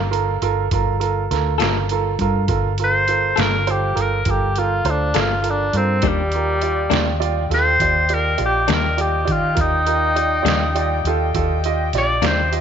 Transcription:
Already playing: fingered electric bass G1, tenor saxophone A#3
0.11 grand piano F4 A4 A#4, closed hi-hat
0.42 fingered electric bass G1, grand piano F4 A4 A#4, closed hi-hat
0.71 fingered electric bass G1, grand piano F4 A4 A#4, kick, closed hi-hat
1.00 grand piano F4 A4 A#4, closed hi-hat
1.31 fingered electric bass D2, grand piano F4 A4 A#4, snare, closed hi-hat
1.58 fingered electric bass G1, clean electric guitar G3 A#3 F4 A4, grand piano F4 A4 A#4, snare, closed hi-hat
1.89 grand piano F4 A4 A#4, closed hi-hat
2.19 fingered electric bass G2, grand piano F4 A4 A#4, kick, closed hi-hat
2.48 fingered electric bass G1, grand piano F4 A4 A#4, kick, closed hi-hat
2.78 grand piano F4 A4 A#4, closed hi-hat
2.84 tenor saxophone C5
3.08 grand piano F4 A4 A#4, closed hi-hat
3.36 fingered electric bass G1, clean electric guitar G3 A#3 F4 A4, grand piano F4 A4 A#4, snare, closed hi-hat
3.41 tenor saxophone A#4
3.67 grand piano F4 A4 C5, tenor saxophone G4, closed hi-hat
3.95 fingered electric bass G1, grand piano F4 A4 A#4, closed hi-hat
4.01 tenor saxophone A#4
4.25 fingered electric bass G1, grand piano F4 A4 A#4, kick, closed hi-hat
4.30 tenor saxophone G4
4.56 grand piano F4 A4 A#4, tenor saxophone F4, closed hi-hat
4.85 fingered electric bass D2, grand piano F4 A4 C5, closed hi-hat
4.90 tenor saxophone D4
5.14 fingered electric bass G1, clean electric guitar G3 A#3 F4 A4, grand piano F4 A4 A#4, snare, closed hi-hat
5.20 tenor saxophone F4
5.42 grand piano F4 A4 A#4, closed hi-hat
5.50 tenor saxophone D4
5.73 fingered electric bass G2, tenor saxophone C4, grand piano F4 A4 A#4, closed hi-hat
6.02 fingered electric bass D#2, clean electric guitar D#3 G3 A#3 D4, grand piano F4 G4 D5, horn section G4 D5 D#5 G5, kick, closed hi-hat
6.08 tenor saxophone G3
6.32 grand piano F4 G4 A#4, closed hi-hat
6.61 grand piano F4 G4 D5, closed hi-hat
6.90 fingered electric bass D#2, clean electric guitar D#3 G3 A#3 D4, grand piano F4 G4 D5, snare, closed hi-hat
7.20 grand piano F4 G4 D5, closed hi-hat
7.50 fingered electric bass D#2, grand piano F4 G4 A4, snare, closed hi-hat
7.55 tenor saxophone C5
7.80 fingered electric bass D#2, grand piano F4 G4 D5, kick, closed hi-hat
8.09 grand piano F4 G4 D5, closed hi-hat
8.14 tenor saxophone A#4
8.38 fingered electric bass A#1, grand piano F4 G4 D5, closed hi-hat
8.46 tenor saxophone G4
8.67 fingered electric bass D#2, clean electric guitar D#3 G3 A#3 D4, grand piano F4 G4 D5, snare, closed hi-hat
8.73 tenor saxophone A#4
8.97 grand piano F4 G4 D5, tenor saxophone G4, closed hi-hat
9.25 fingered electric bass D#3, grand piano F4 G4 D5, kick, closed hi-hat
9.32 tenor saxophone F4
9.55 fingered electric bass D#2, grand piano F4 G4 A#4, kick, closed hi-hat
9.60 tenor saxophone D#4
9.87 grand piano F4 G4 A#4, closed hi-hat
10.16 grand piano F4 G4 D5, closed hi-hat
10.43 fingered electric bass D#2, clean electric guitar D#3 G3 A#3 D4, grand piano F4 G4 D5, closed hi-hat
10.48 snare
10.75 grand piano F4 G4 D5, closed hi-hat
11.04 fingered electric bass D#2, grand piano F4 G4 A4, closed hi-hat
11.35 fingered electric bass D#2, grand piano F4 G4 A4, kick, closed hi-hat
11.64 grand piano F4 G4 D#5, closed hi-hat
11.93 fingered electric bass A#1, grand piano F4 G4 D5, snare, closed hi-hat
11.98 tenor saxophone D5
12.22 fingered electric bass D#2, clean electric guitar D#3 G3 A#3 D4, grand piano F4 G4 D5, snare, closed hi-hat
12.27 tenor saxophone C5
12.52 grand piano F4 G4 D#5, closed hi-hat

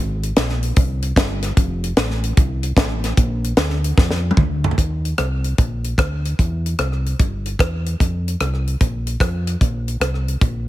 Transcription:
Already playing: fingered electric bass G#1
0.23 closed hi-hat
0.36 fingered electric bass A#1, snare, closed hi-hat
0.49 snare
0.63 closed hi-hat
0.76 fingered electric bass C2, kick, closed hi-hat
1.02 closed hi-hat
1.16 fingered electric bass G1, kick, snare, closed hi-hat
1.42 snare, closed hi-hat
1.57 fingered electric bass F1, kick, closed hi-hat
1.84 closed hi-hat
1.96 fingered electric bass A1, snare, closed hi-hat
2.10 snare
2.23 closed hi-hat
2.37 fingered electric bass C2, kick, closed hi-hat
2.63 closed hi-hat
2.77 fingered electric bass A1, kick, snare, closed hi-hat
3.04 snare, closed hi-hat
3.17 fingered electric bass A#1, kick, closed hi-hat
3.44 closed hi-hat
3.57 fingered electric bass D2, snare, closed hi-hat
3.70 snare
3.84 closed hi-hat
3.98 fingered electric bass F2, kick, snare
4.11 snare
4.31 high tom
4.37 fingered electric bass D2, kick, mid tom
4.64 floor tom
4.71 floor tom
4.78 fingered electric bass D#2, kick, closed hi-hat
5.05 closed hi-hat
5.18 fingered electric bass C2, cross-stick, closed hi-hat
5.44 closed hi-hat
5.58 fingered electric bass A#1, kick, closed hi-hat
5.84 closed hi-hat
5.98 fingered electric bass D2, kick, cross-stick, closed hi-hat
6.25 closed hi-hat
6.39 fingered electric bass E2, kick, closed hi-hat
6.66 closed hi-hat
6.78 fingered electric bass C2, cross-stick, closed hi-hat
6.92 cross-stick
7.06 closed hi-hat
7.19 fingered electric bass G1, kick, closed hi-hat
7.46 closed hi-hat
7.59 fingered electric bass E2, kick, cross-stick, closed hi-hat
7.86 closed hi-hat
8.00 fingered electric bass F2, kick, closed hi-hat
8.28 closed hi-hat
8.40 fingered electric bass C2, cross-stick, closed hi-hat
8.54 cross-stick
8.67 closed hi-hat
8.81 fingered electric bass A#1, kick, closed hi-hat
9.07 closed hi-hat
9.20 fingered electric bass F2, kick, cross-stick, closed hi-hat
9.47 cross-stick, closed hi-hat
9.61 fingered electric bass A#1, kick, closed hi-hat
9.88 closed hi-hat
10.00 fingered electric bass C2, cross-stick, closed hi-hat
10.14 cross-stick
10.28 closed hi-hat
10.41 fingered electric bass A#1, kick, closed hi-hat

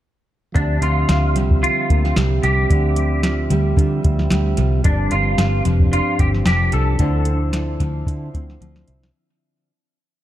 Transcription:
0.52 picked electric bass D2, nylon-string guitar D3, tonewheel organ F3 C4 E5, clean electric guitar D4, kick, closed hi-hat
0.58 tonewheel organ G4
0.82 picked electric bass D2, nylon-string guitar C4, clean electric guitar F4, closed hi-hat
1.09 picked electric bass D2, nylon-string guitar F4, snare, closed hi-hat
1.36 picked electric bass C2, nylon-string guitar G3, closed hi-hat
1.51 kick
1.62 nylon-string guitar F4, clean electric guitar F4, closed hi-hat
1.90 picked electric bass D2, nylon-string guitar A#3, kick, closed hi-hat
2.05 nylon-string guitar C4, snare
2.16 picked electric bass C2, nylon-string guitar G3, snare, closed hi-hat
2.43 picked electric bass C2, nylon-string guitar F4, clean electric guitar G4, closed hi-hat
2.70 picked electric bass D2, nylon-string guitar D3, kick, closed hi-hat
2.96 nylon-string guitar C4, closed hi-hat
3.23 nylon-string guitar F4, snare, closed hi-hat
3.50 picked electric bass D2, nylon-string guitar G3, closed hi-hat
3.76 picked electric bass D3, nylon-string guitar F4, kick, closed hi-hat
4.03 picked electric bass D2, nylon-string guitar C4, kick, closed hi-hat
4.19 snare
4.30 picked electric bass D2, nylon-string guitar G3, snare, closed hi-hat
4.57 picked electric bass C2, nylon-string guitar F4, closed hi-hat
4.82 picked electric bass G1, nylon-string guitar G2, tonewheel organ F3 C4 D4, clean electric guitar D4, kick, closed hi-hat
4.87 tonewheel organ G4
5.11 picked electric bass G1, nylon-string guitar C4, clean electric guitar F4, closed hi-hat
5.38 picked electric bass G1, nylon-string guitar D4, snare, closed hi-hat
5.65 picked electric bass F1, nylon-string guitar F3, closed hi-hat
5.80 kick
5.92 nylon-string guitar D4, clean electric guitar F4, closed hi-hat
6.19 picked electric bass G1, nylon-string guitar C4, clean electric guitar G4, kick, closed hi-hat
6.35 snare
6.46 picked electric bass F1, nylon-string guitar F3, clean electric guitar G4, snare, closed hi-hat
6.72 picked electric bass C2, nylon-string guitar D4, clean electric guitar A4, closed hi-hat
6.97 picked electric bass D2, nylon-string guitar D3, tonewheel organ F3 D4 E4, kick, closed hi-hat
7.02 tonewheel organ C5
7.25 nylon-string guitar C4, closed hi-hat
7.52 nylon-string guitar E4, snare, closed hi-hat
7.80 picked electric bass D2, nylon-string guitar F3, kick, closed hi-hat
8.07 picked electric bass D3, nylon-string guitar E4, kick, closed hi-hat
8.34 picked electric bass D2, nylon-string guitar C4, kick, closed hi-hat
8.50 snare
8.60 picked electric bass D2, nylon-string guitar F3, closed hi-hat
8.76 snare
8.88 picked electric bass C2, nylon-string guitar E4, closed hi-hat
9.03 snare

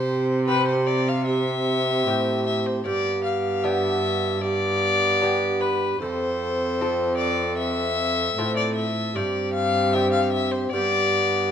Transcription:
Already playing: lute C3, cello C3, trombone C4, recorder G4, violin C5
0.47 lute C4 G4, violin B4
0.67 violin C5
0.87 violin D5
1.09 violin F5
1.26 trombone C4, recorder G4, violin E5
2.06 cello A2, lute A2 C4 G4
2.46 violin E5
2.66 violin C5
2.84 cello G2, lute G2, trombone B3, recorder G4, violin D5
3.24 violin F5
3.63 lute B3 D4 G4, violin E5
4.41 trombone B3, recorder G4, violin D5
5.22 lute B3 D4 G4
5.61 violin B4
6.00 cello F2, lute F2, trombone C4, recorder A4, violin C5
6.81 lute C4 F4 A4
7.17 violin D5
7.57 violin E5
8.36 cello A2, lute A2 C4 F4 A4
8.57 violin D5
8.75 violin E5
9.13 cello G2, lute G2, trombone C4, recorder G4, violin D5
9.53 violin F5
9.93 lute C4 D4 G4, violin E5
10.12 violin F5
10.32 violin E5
10.52 violin C5
10.71 lute G2, cello G2, trombone B3, recorder G4, violin D5

